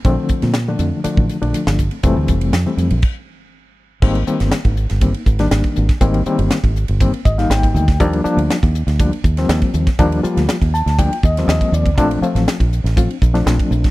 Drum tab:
CC |----------------|--------x-------|x---------------|----------------|
RD |x-xxx-x-x-xxx-xx|x-xxx-xx--------|-x-xxx-xxx-xxx-x|xx-xxx-xxx-xxx-x|
HH |p-p-p-p-p-p-p-p-|p-p-p-p---------|--p-p-p-p-p-p-p-|p-p-p-p-p-p-p-p-|
SD |---oo--------o--|----o-----------|---oo--o---oo--o|----o------oo--o|
BD |o-o------o----o-|o-o-----o-------|o----o--o-o--o-o|o----o--o-o--o-o|

CC |----------------|----------------|----------------|
RD |xx-xxx-xxx-xxx-x|xx-xxx-xxx-xxx-x|xx-xxx-xxx-xxx-x|
HH |p-p-p-p-p-p-p-p-|p-p-p-p-p-p-p-p-|p-p-p-p-p-p-p-p-|
SD |----o--o---oo--o|---oo--o---oo---|---oo--o---oo--o|
BD |o----o--o-o--o-o|o----o--o-o--o-o|o----o--o-o--o-o|